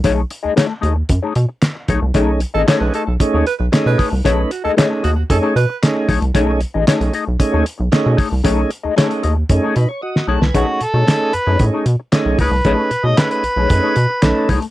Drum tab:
HH |x-x-x-x-x-x-x-x-|x-x-x-x-x-x-x-o-|x-x-x-x-x-x-x-ox|x-x-xxx-x-x-x-o-|
CP |----x-------x---|----x-------x---|----x-------x---|----x-------x---|
SD |----o-------o---|----o-------o---|----o-------o---|----o-------o---|
BD |o-------o-----o-|o-------o-----o-|o-------o-----o-|o-------o-----o-|

HH |x-x-xxx-x-x-----|x-x-x-x-x-x-x-o-|x-x-xxx-x-x-x-ox|
CP |----x-----------|----x-------x---|----x-------x---|
SD |----o--------o-o|----o-------o---|----o-------o---|
BD |o-------o-------|o-------o-----o-|o-------o-----o-|